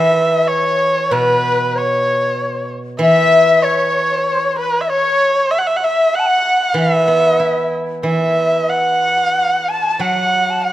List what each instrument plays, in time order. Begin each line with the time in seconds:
Already playing: guzheng E3, dizi E5, erhu E5
0.33 dizi E5
0.47 dizi C#5, erhu C#5
1.11 guzheng B2, dizi B4, erhu B4
1.76 dizi C#5, erhu C#5
2.99 guzheng E3, erhu E5, dizi E5
3.63 erhu C#5, dizi C#5
4.25 dizi C#5
4.58 dizi B4, erhu B4
4.81 dizi E5, erhu E5
4.88 dizi C#5, erhu C#5
5.35 dizi C#5
5.51 erhu E5
5.58 erhu F#5
5.67 erhu E5
5.76 erhu F#5
5.82 dizi E5, erhu E5
6.14 dizi F#5, erhu F#5
6.19 dizi A5
6.27 dizi F#5
6.61 dizi F#5
6.74 guzheng E3, erhu E5
6.78 dizi E5
6.88 dizi F#5
6.97 dizi E5
7.03 dizi F#5
7.08 guzheng B3, dizi E5
7.20 dizi F#5
7.27 dizi E5
7.33 dizi F#5
7.40 guzheng E4, dizi E5
8.03 guzheng E3, erhu E5, dizi E5
8.55 dizi E5
8.70 erhu F#5, dizi F#5
9.37 dizi F#5
9.68 erhu A5, dizi A5
9.99 guzheng F#3, erhu F#5, dizi F#5
10.50 dizi A5
10.64 erhu F#5, dizi F#5